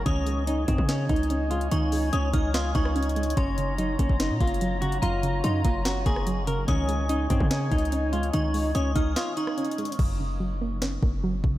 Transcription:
<<
  \new Staff \with { instrumentName = "Synth bell" } { \time 4/4 \key des \major \tempo 4 = 145 ees'''2. r4 | des'''4 ees'''8 f'''8 ees'''8 des'''4. | c'''2. r4 | bes''4 c'''8 bes''4 des'''4. |
ees'''2. r4 | des'''4 ees'''8 f'''8 ees'''8 des'''4. | r1 | }
  \new Staff \with { instrumentName = "Woodwind section" } { \time 4/4 \key des \major << { <ees' aes''>1~ | <ees' aes''>1 | <ges bes''>1~ | <ges bes''>1 |
<ees' aes''>1~ | <ees' aes''>1 | r1 | } \\ { des''1~ | des''1~ | des''1~ | des''1 |
des''1~ | des''1 | r1 | } >> }
  \new Staff \with { instrumentName = "Clean electric guitar" } { \time 4/4 \key des \major des'4 ees'8 c'8 des'8 ees'4 f'8 | ees'4 des'8 ees'8 f'8 ees'4. | des'4 ees'8 des'8 ees'8 f'4 ges'8 | f'4 ees'8 f'8 ges'8 aes'4 bes'8 |
des'4 ees'8 c'8 des'8 ees'4 f'8 | ees'4 des'8 ees'8 f'8 ees'4. | r1 | }
  \new Staff \with { instrumentName = "Synth pluck" } { \time 4/4 \key des \major ees8 aes8 des'8 ees'8 ees''8 ees'8 des'8 aes8 | ees8 aes8 des'8 ees'8 ees''8 ees'8 des'8 aes8 | ges,8 des8 ges8 bes8 des'8 bes8 ges8 des8 | ges,8 des8 ges8 bes8 des'8 bes8 ges8 des8 |
ees8 aes8 des'8 ees'8 ees''8 ees'8 des'8 aes8 | ees8 aes8 des'8 ees'8 ees''8 ees'8 des'8 aes8 | ges,8 des8 ges8 bes8 des'8 bes8 ges8 des8 | }
  \new Staff \with { instrumentName = "808-style bass" } { \clef bass \time 4/4 \key des \major des,4. f,16 des8. des,4. | des,4 des,8 des,4 des,4. | ges,,4. ges,,16 ges,,8 bes,16 ges,,4. | ges,,4 ges,8 ges,,4 ges,,4. |
des,4. f,16 des8. des,4. | des,4 des,8 des,8 r2 | ges,,2~ ges,,8 ges,,4 ges,,8 | }
  \new DrumStaff \with { instrumentName = "Drums" } \drummode { \time 4/4 <hh bd>8 hh8 hh8 <hh bd>16 bd16 \tuplet 3/2 { <hh sn>16 r16 r16 <hh bd>16 hh16 hh16 } hh8 hh16 hh16 | hh8 hho8 hh8 <hh bd>8 <hh sn>8 <hh bd>16 ss16 \tuplet 3/2 { hh16 hh16 hh16 hh16 hh16 hh16 } | <hh bd>8 hh8 hh8 <hh bd>16 bd16 \tuplet 3/2 { <hh sn>16 r16 r16 <hh bd>16 hh16 hh16 } hh8 hh16 hh16 | hh8 hh8 hh8 <hh bd>8 <hh sn>8 <hh bd>16 ss16 hh8 hh8 |
<hh bd>8 hh8 hh8 <hh bd>16 bd16 \tuplet 3/2 { <hh sn>16 r16 r16 <hh bd>16 hh16 hh16 } hh8 hh16 hh16 | hh8 hho8 hh8 <hh bd>8 <hh sn>8 hh16 ss16 \tuplet 3/2 { hh16 hh16 hh16 hh16 hh16 hh16 } | <cymc bd>4 r4 sn8 bd8 r8 bd8 | }
>>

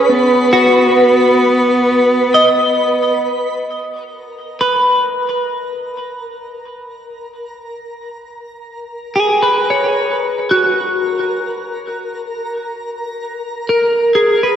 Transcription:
<<
  \new Staff \with { instrumentName = "Synth texture" } { \time 4/4 \key b \major \tempo 4 = 66 <b' b'''>1 | <ais' ais''>1~ | <ais' ais''>1~ | <ais' ais''>1 | }
  \new Staff \with { instrumentName = "Clean electric guitar" } { \time 4/4 \key b \major <gis' cis''>8 fis'2 dis''4.~ | dis''8 r8 b'2 r4 | r2 gis'16 b'16 cis''4 fis'8~ | fis'8 r2 r8 ais'8 gis'16 b'16 | }
  \new Staff \with { instrumentName = "Cello" } { \time 4/4 \key b \major b2.~ b8 r8 | r1 | r1 | r1 | }
>>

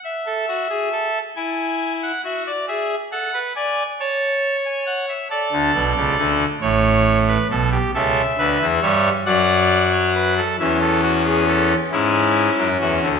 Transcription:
<<
  \new Staff \with { instrumentName = "Pipe organ" } { \time 6/8 \key a \mixolydian \tempo 4. = 45 << { e''4. gis''8. fis''16 e''16 d''16 | e''8 fis''8 gis''8 a''8. gis''16 fis''16 e''16 | d''4. cis''4. | e''4. fis''4. |
e''16 a'16 fis'16 gis'16 a'8 e'4 fis'8 | } \\ { r16 a'16 fis'16 gis'16 a'8 e'4 fis'8 | gis'8 a'16 b'16 d''8 cis''4. | a'4. r8. b'16 a'16 g'16 | a'8 b'8 cis''8 d''8. cis''16 b'16 a'16 |
cis'4. cis'4. | } >> }
  \new Staff \with { instrumentName = "Pipe organ" } { \clef bass \time 6/8 \key a \mixolydian r2. | r2. | r16 <d, d>16 <b,, b,>16 <cis, cis>16 <d, d>8 <a,, a,>4 <b,, b,>8 | <cis, cis>8 <d, d>16 <e, e>16 <g, g>8 <fis, fis>4. |
<e, e>4. <gis, gis>8. <fis, fis>16 <e, e>16 <d, d>16 | }
>>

